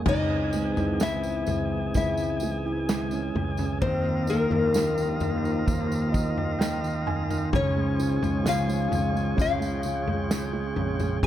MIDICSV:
0, 0, Header, 1, 7, 480
1, 0, Start_track
1, 0, Tempo, 940439
1, 33, Time_signature, 4, 2, 24, 8
1, 1952, Tempo, 925926
1, 5811, End_track
2, 0, Start_track
2, 0, Title_t, "Tonewheel organ"
2, 0, Program_c, 0, 16
2, 31, Note_on_c, 0, 68, 60
2, 32, Note_on_c, 0, 80, 71
2, 35, Note_on_c, 0, 52, 63
2, 1931, Note_off_c, 0, 68, 0
2, 1932, Note_off_c, 0, 80, 0
2, 1933, Note_off_c, 0, 52, 0
2, 1944, Note_on_c, 0, 75, 63
2, 1947, Note_on_c, 0, 65, 66
2, 1949, Note_on_c, 0, 70, 58
2, 1949, Note_on_c, 0, 77, 75
2, 3854, Note_off_c, 0, 75, 0
2, 3856, Note_off_c, 0, 70, 0
2, 3856, Note_off_c, 0, 77, 0
2, 3872, Note_on_c, 0, 73, 66
2, 3874, Note_on_c, 0, 68, 61
2, 3874, Note_on_c, 0, 80, 73
2, 4823, Note_off_c, 0, 80, 0
2, 4840, Note_on_c, 0, 79, 70
2, 5767, Note_off_c, 0, 65, 0
2, 5769, Note_off_c, 0, 73, 0
2, 5770, Note_off_c, 0, 68, 0
2, 5784, Note_off_c, 0, 79, 0
2, 5794, Note_on_c, 0, 68, 63
2, 5794, Note_on_c, 0, 80, 76
2, 5795, Note_on_c, 0, 72, 58
2, 5811, Note_off_c, 0, 68, 0
2, 5811, Note_off_c, 0, 72, 0
2, 5811, Note_off_c, 0, 80, 0
2, 5811, End_track
3, 0, Start_track
3, 0, Title_t, "Nylon-string guitar"
3, 0, Program_c, 1, 24
3, 41, Note_on_c, 1, 63, 78
3, 44, Note_on_c, 1, 75, 99
3, 501, Note_off_c, 1, 63, 0
3, 501, Note_off_c, 1, 75, 0
3, 524, Note_on_c, 1, 64, 78
3, 525, Note_on_c, 1, 76, 102
3, 981, Note_off_c, 1, 64, 0
3, 1002, Note_off_c, 1, 76, 0
3, 1005, Note_on_c, 1, 64, 67
3, 1008, Note_on_c, 1, 76, 84
3, 1696, Note_off_c, 1, 64, 0
3, 1698, Note_off_c, 1, 76, 0
3, 1948, Note_on_c, 1, 72, 107
3, 1952, Note_on_c, 1, 60, 85
3, 2174, Note_off_c, 1, 72, 0
3, 2176, Note_off_c, 1, 60, 0
3, 2197, Note_on_c, 1, 70, 92
3, 2200, Note_on_c, 1, 58, 75
3, 3136, Note_off_c, 1, 70, 0
3, 3138, Note_off_c, 1, 58, 0
3, 3883, Note_on_c, 1, 61, 74
3, 3887, Note_on_c, 1, 73, 97
3, 4339, Note_off_c, 1, 61, 0
3, 4363, Note_on_c, 1, 65, 80
3, 4370, Note_on_c, 1, 77, 106
3, 4375, Note_off_c, 1, 73, 0
3, 4817, Note_off_c, 1, 65, 0
3, 4843, Note_on_c, 1, 65, 70
3, 4844, Note_off_c, 1, 77, 0
3, 4850, Note_on_c, 1, 77, 93
3, 5311, Note_off_c, 1, 77, 0
3, 5311, Note_on_c, 1, 75, 93
3, 5534, Note_off_c, 1, 65, 0
3, 5538, Note_off_c, 1, 75, 0
3, 5795, Note_on_c, 1, 80, 108
3, 5811, Note_off_c, 1, 80, 0
3, 5811, End_track
4, 0, Start_track
4, 0, Title_t, "French horn section"
4, 0, Program_c, 2, 60
4, 30, Note_on_c, 2, 52, 73
4, 31, Note_on_c, 2, 60, 83
4, 32, Note_on_c, 2, 44, 71
4, 1691, Note_off_c, 2, 52, 0
4, 1692, Note_off_c, 2, 60, 0
4, 1693, Note_off_c, 2, 44, 0
4, 1945, Note_on_c, 2, 53, 81
4, 1946, Note_on_c, 2, 43, 77
4, 1946, Note_on_c, 2, 58, 84
4, 3612, Note_off_c, 2, 53, 0
4, 3612, Note_off_c, 2, 58, 0
4, 3613, Note_off_c, 2, 43, 0
4, 3875, Note_on_c, 2, 44, 81
4, 3877, Note_on_c, 2, 53, 77
4, 3877, Note_on_c, 2, 61, 89
4, 5529, Note_off_c, 2, 44, 0
4, 5530, Note_off_c, 2, 53, 0
4, 5530, Note_off_c, 2, 61, 0
4, 5788, Note_on_c, 2, 60, 83
4, 5789, Note_on_c, 2, 51, 76
4, 5790, Note_on_c, 2, 44, 75
4, 5811, Note_off_c, 2, 44, 0
4, 5811, Note_off_c, 2, 51, 0
4, 5811, Note_off_c, 2, 60, 0
4, 5811, End_track
5, 0, Start_track
5, 0, Title_t, "Felt piano"
5, 0, Program_c, 3, 0
5, 0, Control_c, 3, 64, 127
5, 34, Note_on_c, 3, 49, 65
5, 40, Control_c, 3, 64, 0
5, 133, Control_c, 3, 64, 127
5, 275, Note_on_c, 3, 56, 51
5, 401, Note_on_c, 3, 64, 51
5, 507, Note_off_c, 3, 56, 0
5, 514, Note_on_c, 3, 56, 54
5, 747, Note_off_c, 3, 56, 0
5, 754, Note_on_c, 3, 56, 48
5, 991, Note_off_c, 3, 56, 0
5, 999, Note_on_c, 3, 56, 65
5, 1233, Note_off_c, 3, 56, 0
5, 1240, Note_on_c, 3, 56, 57
5, 1339, Note_off_c, 3, 64, 0
5, 1356, Note_on_c, 3, 64, 50
5, 1465, Note_off_c, 3, 56, 0
5, 1473, Note_on_c, 3, 56, 57
5, 1592, Note_on_c, 3, 61, 55
5, 1704, Note_off_c, 3, 56, 0
5, 1712, Note_on_c, 3, 56, 54
5, 1823, Note_off_c, 3, 61, 0
5, 1831, Note_on_c, 3, 61, 51
5, 1931, Note_off_c, 3, 49, 0
5, 1933, Note_off_c, 3, 64, 0
5, 1943, Note_off_c, 3, 56, 0
5, 1947, Note_off_c, 3, 61, 0
5, 1947, Note_on_c, 3, 51, 73
5, 1957, Control_c, 3, 64, 0
5, 2040, Control_c, 3, 64, 127
5, 2060, Note_off_c, 3, 51, 0
5, 2068, Note_on_c, 3, 51, 51
5, 2184, Note_off_c, 3, 51, 0
5, 2192, Note_on_c, 3, 51, 58
5, 2299, Note_off_c, 3, 51, 0
5, 2307, Note_on_c, 3, 51, 54
5, 2416, Note_off_c, 3, 51, 0
5, 2424, Note_on_c, 3, 51, 59
5, 2540, Note_off_c, 3, 51, 0
5, 2548, Note_on_c, 3, 51, 55
5, 2659, Note_off_c, 3, 51, 0
5, 2667, Note_on_c, 3, 51, 53
5, 2774, Note_off_c, 3, 51, 0
5, 2782, Note_on_c, 3, 51, 52
5, 2901, Note_on_c, 3, 58, 65
5, 3009, Note_off_c, 3, 51, 0
5, 3016, Note_on_c, 3, 51, 54
5, 3137, Note_off_c, 3, 51, 0
5, 3143, Note_on_c, 3, 75, 69
5, 3145, Note_on_c, 3, 51, 55
5, 3252, Note_off_c, 3, 51, 0
5, 3260, Note_on_c, 3, 51, 51
5, 3372, Note_off_c, 3, 75, 0
5, 3377, Note_off_c, 3, 51, 0
5, 3384, Note_on_c, 3, 51, 56
5, 3384, Note_on_c, 3, 79, 69
5, 3500, Note_off_c, 3, 51, 0
5, 3508, Note_on_c, 3, 51, 58
5, 3613, Note_off_c, 3, 79, 0
5, 3627, Note_off_c, 3, 51, 0
5, 3633, Note_on_c, 3, 80, 68
5, 3635, Note_on_c, 3, 51, 56
5, 3744, Note_off_c, 3, 51, 0
5, 3752, Note_on_c, 3, 51, 54
5, 3849, Note_off_c, 3, 58, 0
5, 3858, Note_off_c, 3, 80, 0
5, 3870, Note_off_c, 3, 51, 0
5, 3877, Note_on_c, 3, 49, 71
5, 3883, Control_c, 3, 64, 0
5, 3959, Control_c, 3, 64, 127
5, 3995, Note_on_c, 3, 56, 53
5, 4106, Note_off_c, 3, 49, 0
5, 4114, Note_on_c, 3, 49, 56
5, 4221, Note_off_c, 3, 56, 0
5, 4228, Note_on_c, 3, 56, 54
5, 4337, Note_off_c, 3, 49, 0
5, 4345, Note_on_c, 3, 49, 58
5, 4461, Note_off_c, 3, 56, 0
5, 4469, Note_on_c, 3, 56, 59
5, 4576, Note_off_c, 3, 49, 0
5, 4584, Note_on_c, 3, 49, 51
5, 4693, Note_off_c, 3, 56, 0
5, 4701, Note_on_c, 3, 56, 54
5, 4818, Note_off_c, 3, 49, 0
5, 4825, Note_on_c, 3, 49, 70
5, 4936, Note_off_c, 3, 56, 0
5, 4944, Note_on_c, 3, 56, 56
5, 5066, Note_off_c, 3, 49, 0
5, 5073, Note_on_c, 3, 49, 57
5, 5186, Note_off_c, 3, 56, 0
5, 5194, Note_on_c, 3, 56, 52
5, 5304, Note_off_c, 3, 49, 0
5, 5312, Note_on_c, 3, 49, 59
5, 5421, Note_off_c, 3, 56, 0
5, 5429, Note_on_c, 3, 56, 56
5, 5542, Note_off_c, 3, 49, 0
5, 5550, Note_on_c, 3, 49, 54
5, 5666, Note_off_c, 3, 56, 0
5, 5674, Note_on_c, 3, 56, 54
5, 5783, Note_off_c, 3, 49, 0
5, 5788, Note_off_c, 3, 56, 0
5, 5794, Note_on_c, 3, 48, 72
5, 5796, Control_c, 3, 64, 0
5, 5811, Note_off_c, 3, 48, 0
5, 5811, End_track
6, 0, Start_track
6, 0, Title_t, "Fretless electric bass"
6, 0, Program_c, 4, 35
6, 32, Note_on_c, 4, 37, 92
6, 375, Note_off_c, 4, 37, 0
6, 397, Note_on_c, 4, 37, 85
6, 738, Note_off_c, 4, 37, 0
6, 758, Note_on_c, 4, 37, 85
6, 981, Note_off_c, 4, 37, 0
6, 996, Note_on_c, 4, 37, 104
6, 1692, Note_off_c, 4, 37, 0
6, 1711, Note_on_c, 4, 37, 82
6, 1933, Note_off_c, 4, 37, 0
6, 1949, Note_on_c, 4, 39, 94
6, 2291, Note_off_c, 4, 39, 0
6, 2305, Note_on_c, 4, 39, 93
6, 2648, Note_off_c, 4, 39, 0
6, 2669, Note_on_c, 4, 39, 92
6, 2895, Note_off_c, 4, 39, 0
6, 2912, Note_on_c, 4, 39, 99
6, 3855, Note_off_c, 4, 39, 0
6, 3875, Note_on_c, 4, 37, 104
6, 4215, Note_off_c, 4, 37, 0
6, 4234, Note_on_c, 4, 37, 91
6, 4573, Note_off_c, 4, 37, 0
6, 4593, Note_on_c, 4, 37, 93
6, 4816, Note_off_c, 4, 37, 0
6, 4833, Note_on_c, 4, 37, 98
6, 5529, Note_off_c, 4, 37, 0
6, 5551, Note_on_c, 4, 34, 82
6, 5774, Note_off_c, 4, 34, 0
6, 5792, Note_on_c, 4, 36, 105
6, 5811, Note_off_c, 4, 36, 0
6, 5811, End_track
7, 0, Start_track
7, 0, Title_t, "Drums"
7, 29, Note_on_c, 9, 43, 112
7, 29, Note_on_c, 9, 49, 90
7, 31, Note_on_c, 9, 36, 98
7, 80, Note_off_c, 9, 43, 0
7, 80, Note_off_c, 9, 49, 0
7, 82, Note_off_c, 9, 36, 0
7, 269, Note_on_c, 9, 54, 47
7, 320, Note_off_c, 9, 54, 0
7, 393, Note_on_c, 9, 54, 26
7, 394, Note_on_c, 9, 43, 63
7, 444, Note_off_c, 9, 54, 0
7, 445, Note_off_c, 9, 43, 0
7, 510, Note_on_c, 9, 54, 77
7, 515, Note_on_c, 9, 38, 106
7, 561, Note_off_c, 9, 54, 0
7, 566, Note_off_c, 9, 38, 0
7, 630, Note_on_c, 9, 54, 44
7, 681, Note_off_c, 9, 54, 0
7, 747, Note_on_c, 9, 54, 41
7, 753, Note_on_c, 9, 43, 63
7, 799, Note_off_c, 9, 54, 0
7, 804, Note_off_c, 9, 43, 0
7, 992, Note_on_c, 9, 54, 49
7, 996, Note_on_c, 9, 36, 89
7, 997, Note_on_c, 9, 43, 63
7, 1043, Note_off_c, 9, 54, 0
7, 1047, Note_off_c, 9, 36, 0
7, 1048, Note_off_c, 9, 43, 0
7, 1110, Note_on_c, 9, 54, 39
7, 1161, Note_off_c, 9, 54, 0
7, 1224, Note_on_c, 9, 54, 46
7, 1275, Note_off_c, 9, 54, 0
7, 1474, Note_on_c, 9, 54, 76
7, 1476, Note_on_c, 9, 38, 111
7, 1525, Note_off_c, 9, 54, 0
7, 1527, Note_off_c, 9, 38, 0
7, 1587, Note_on_c, 9, 54, 31
7, 1638, Note_off_c, 9, 54, 0
7, 1714, Note_on_c, 9, 43, 64
7, 1765, Note_off_c, 9, 43, 0
7, 1824, Note_on_c, 9, 54, 31
7, 1832, Note_on_c, 9, 43, 60
7, 1875, Note_off_c, 9, 54, 0
7, 1883, Note_off_c, 9, 43, 0
7, 1949, Note_on_c, 9, 36, 105
7, 1950, Note_on_c, 9, 43, 111
7, 2001, Note_off_c, 9, 36, 0
7, 2002, Note_off_c, 9, 43, 0
7, 2184, Note_on_c, 9, 54, 46
7, 2236, Note_off_c, 9, 54, 0
7, 2313, Note_on_c, 9, 43, 69
7, 2365, Note_off_c, 9, 43, 0
7, 2428, Note_on_c, 9, 54, 77
7, 2436, Note_on_c, 9, 38, 99
7, 2480, Note_off_c, 9, 54, 0
7, 2488, Note_off_c, 9, 38, 0
7, 2549, Note_on_c, 9, 54, 48
7, 2601, Note_off_c, 9, 54, 0
7, 2667, Note_on_c, 9, 54, 39
7, 2671, Note_on_c, 9, 43, 66
7, 2718, Note_off_c, 9, 54, 0
7, 2723, Note_off_c, 9, 43, 0
7, 2796, Note_on_c, 9, 54, 27
7, 2847, Note_off_c, 9, 54, 0
7, 2912, Note_on_c, 9, 36, 93
7, 2913, Note_on_c, 9, 54, 49
7, 2914, Note_on_c, 9, 43, 62
7, 2964, Note_off_c, 9, 36, 0
7, 2965, Note_off_c, 9, 54, 0
7, 2966, Note_off_c, 9, 43, 0
7, 3037, Note_on_c, 9, 54, 40
7, 3089, Note_off_c, 9, 54, 0
7, 3153, Note_on_c, 9, 54, 47
7, 3154, Note_on_c, 9, 36, 84
7, 3205, Note_off_c, 9, 54, 0
7, 3206, Note_off_c, 9, 36, 0
7, 3275, Note_on_c, 9, 43, 56
7, 3327, Note_off_c, 9, 43, 0
7, 3396, Note_on_c, 9, 38, 108
7, 3399, Note_on_c, 9, 54, 75
7, 3448, Note_off_c, 9, 38, 0
7, 3451, Note_off_c, 9, 54, 0
7, 3516, Note_on_c, 9, 54, 30
7, 3568, Note_off_c, 9, 54, 0
7, 3636, Note_on_c, 9, 43, 65
7, 3688, Note_off_c, 9, 43, 0
7, 3756, Note_on_c, 9, 43, 59
7, 3756, Note_on_c, 9, 54, 32
7, 3808, Note_off_c, 9, 43, 0
7, 3808, Note_off_c, 9, 54, 0
7, 3873, Note_on_c, 9, 43, 109
7, 3874, Note_on_c, 9, 36, 102
7, 3925, Note_off_c, 9, 43, 0
7, 3926, Note_off_c, 9, 36, 0
7, 4114, Note_on_c, 9, 54, 48
7, 4166, Note_off_c, 9, 54, 0
7, 4234, Note_on_c, 9, 43, 67
7, 4239, Note_on_c, 9, 54, 28
7, 4286, Note_off_c, 9, 43, 0
7, 4291, Note_off_c, 9, 54, 0
7, 4354, Note_on_c, 9, 38, 103
7, 4357, Note_on_c, 9, 54, 78
7, 4406, Note_off_c, 9, 38, 0
7, 4409, Note_off_c, 9, 54, 0
7, 4476, Note_on_c, 9, 54, 47
7, 4528, Note_off_c, 9, 54, 0
7, 4593, Note_on_c, 9, 43, 62
7, 4596, Note_on_c, 9, 54, 43
7, 4644, Note_off_c, 9, 43, 0
7, 4648, Note_off_c, 9, 54, 0
7, 4721, Note_on_c, 9, 54, 27
7, 4773, Note_off_c, 9, 54, 0
7, 4830, Note_on_c, 9, 43, 64
7, 4833, Note_on_c, 9, 36, 94
7, 4839, Note_on_c, 9, 54, 51
7, 4882, Note_off_c, 9, 43, 0
7, 4885, Note_off_c, 9, 36, 0
7, 4891, Note_off_c, 9, 54, 0
7, 4956, Note_on_c, 9, 54, 42
7, 5008, Note_off_c, 9, 54, 0
7, 5066, Note_on_c, 9, 54, 49
7, 5117, Note_off_c, 9, 54, 0
7, 5193, Note_on_c, 9, 43, 58
7, 5244, Note_off_c, 9, 43, 0
7, 5313, Note_on_c, 9, 38, 110
7, 5314, Note_on_c, 9, 54, 80
7, 5365, Note_off_c, 9, 38, 0
7, 5366, Note_off_c, 9, 54, 0
7, 5549, Note_on_c, 9, 43, 66
7, 5601, Note_off_c, 9, 43, 0
7, 5669, Note_on_c, 9, 54, 30
7, 5672, Note_on_c, 9, 43, 62
7, 5721, Note_off_c, 9, 54, 0
7, 5724, Note_off_c, 9, 43, 0
7, 5791, Note_on_c, 9, 36, 107
7, 5793, Note_on_c, 9, 43, 118
7, 5811, Note_off_c, 9, 36, 0
7, 5811, Note_off_c, 9, 43, 0
7, 5811, End_track
0, 0, End_of_file